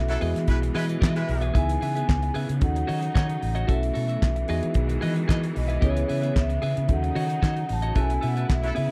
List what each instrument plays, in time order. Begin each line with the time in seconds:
Already playing: fingered electric bass B1, string section B2 E3 A3, tine electric piano C#4 E4 F#4 A4, vibraphone E5
0.08 horn section F#3 E4 A4, muted clean electric guitar stroke, closed hi-hat
0.20 fingered electric bass E2, string section B2 G#3, tine electric piano B3 E4 F#4 G#4, clean electric guitar G#4 B4 D#5, open hi-hat
0.35 fingered electric bass E3, muted clean electric guitar stroke, snare, closed hi-hat
0.48 fingered electric bass B1, horn section G#3 E4 B4, muted clean electric guitar stroke, kick, closed hi-hat
0.62 muted clean electric guitar stroke, closed hi-hat
0.74 fingered electric bass E3, horn section G#3 E4 B4, clean electric guitar G#4 B4 D#5, open hi-hat
0.88 clean electric guitar G#4 B4 D#5, closed hi-hat
1.00 fingered electric bass E3, clean electric guitar G#4 B4 D#5, vibraphone E5, kick, snare, clap
1.15 horn section G#3 E4 B4, muted clean electric guitar stroke, closed hi-hat
1.27 fingered electric bass B1, muted clean electric guitar stroke, open hi-hat
1.41 clean electric guitar G#4 B4 E5, closed hi-hat
1.54 fingered electric bass C#2, string section C#3 B3, tine electric piano B3 D#4 E4 G#4, clean electric guitar G#4 B4 E5, vibraphone G#5, kick, closed hi-hat
1.69 closed hi-hat
1.81 fingered electric bass C#3, clean electric guitar G#4 B4 E5, vibraphone G#5, open hi-hat
1.95 clean electric guitar G#4 B4 E5, closed hi-hat
2.08 fingered electric bass C#2, muted clean electric guitar stroke, kick, snare, clap
2.22 muted clean electric guitar stroke, closed hi-hat
2.34 fingered electric bass C#3, clean electric guitar G#4 B4 E5, open hi-hat
2.49 fingered electric bass C#3, muted clean electric guitar stroke, closed hi-hat
2.60 fingered electric bass D#2, string section F#3 D#4, tine electric piano C#4 D#4 F#4 A4, vibraphone F#5, muted clean electric guitar stroke, kick, closed hi-hat
2.75 muted clean electric guitar stroke, closed hi-hat
2.87 fingered electric bass D#3, clean electric guitar F#4 C#5 D#5, open hi-hat
3.02 muted clean electric guitar stroke, closed hi-hat
3.14 fingered electric bass D#3, clean electric guitar F#4 C#5 D#5, kick, snare, clap
3.28 muted clean electric guitar stroke, closed hi-hat
3.41 fingered electric bass A1, muted clean electric guitar stroke, open hi-hat
3.55 clean electric guitar F#4 C#5 D#5, closed hi-hat
3.67 fingered electric bass B1, string section B2 E3 A3, tine electric piano C#4 E4 F#4 A4, clean electric guitar F#4 A4 E5, vibraphone E5, kick, closed hi-hat
3.83 closed hi-hat
3.93 fingered electric bass B2, clean electric guitar F#4 A4 E5, open hi-hat
4.08 clean electric guitar F#4 A4 E5, closed hi-hat
4.22 fingered electric bass B1, muted clean electric guitar stroke, kick, snare, clap
4.36 muted clean electric guitar stroke, closed hi-hat
4.48 fingered electric bass E2, string section D#3 G#3, tine electric piano B3 D#4 F#4 G#4, clean electric guitar G#4 B4 D#5, open hi-hat
4.62 fingered electric bass E3, muted clean electric guitar stroke, closed hi-hat
4.74 fingered electric bass B1, muted clean electric guitar stroke, kick, closed hi-hat
4.89 muted clean electric guitar stroke, closed hi-hat
5.01 fingered electric bass E3, clean electric guitar G#4 B4 D#5, open hi-hat
5.16 muted clean electric guitar stroke, closed hi-hat
5.28 fingered electric bass E3, clean electric guitar G#4 B4 D#5, kick, snare, clap
5.42 muted clean electric guitar stroke, closed hi-hat
5.54 fingered electric bass B1, vibraphone D#5, muted clean electric guitar stroke, open hi-hat
5.68 clean electric guitar G#4 B4 E5, closed hi-hat
5.81 fingered electric bass C#2, string section C#3 B3, tine electric piano B3 C#4 E4 G#4, clean electric guitar G#4 B4 E5, vibraphone C#5, kick, closed hi-hat
5.97 closed hi-hat
6.08 fingered electric bass C#3, clean electric guitar G#4 B4 E5, open hi-hat
6.22 clean electric guitar G#4 B4 E5, closed hi-hat
6.36 fingered electric bass C#2, vibraphone E5, kick, snare, clap
6.49 muted clean electric guitar stroke, closed hi-hat
6.62 fingered electric bass C#3, clean electric guitar G#4 B4 E5, open hi-hat
6.77 fingered electric bass C#3, muted clean electric guitar stroke, closed hi-hat
6.87 fingered electric bass D#2, string section F#3 D#4, tine electric piano C#4 D#4 F#4 A4, muted clean electric guitar stroke, kick, closed hi-hat
6.93 vibraphone F#5
7.03 muted clean electric guitar stroke, closed hi-hat
7.15 fingered electric bass D#3, clean electric guitar F#4 C#5 D#5, open hi-hat
7.21 vibraphone F#5
7.29 muted clean electric guitar stroke, closed hi-hat
7.42 fingered electric bass D#3, clean electric guitar F#4 C#5 D#5, kick, snare, clap
7.56 muted clean electric guitar stroke, closed hi-hat
7.69 fingered electric bass A1, vibraphone A5, muted clean electric guitar stroke, open hi-hat
7.82 clean electric guitar F#4 C#5 D#5, closed hi-hat
7.95 fingered electric bass B1, string section B2 A3 E4, tine electric piano C#4 E4 F#4 G#4, clean electric guitar A4 B4 E5, kick, closed hi-hat
8.00 tine electric piano A4, vibraphone G#5
8.10 closed hi-hat
8.21 fingered electric bass B2, clean electric guitar A4 B4 E5, open hi-hat
8.26 vibraphone F#5
8.36 clean electric guitar A4 B4 E5, closed hi-hat
8.50 fingered electric bass B1, vibraphone E5, kick, snare, clap
8.63 horn section F#3 E4 A4, muted clean electric guitar stroke, closed hi-hat
8.75 string section C#3 B3, fingered electric bass C#3, tine electric piano B3 C#4 E4 G#4, clean electric guitar G#4 B4 E5, open hi-hat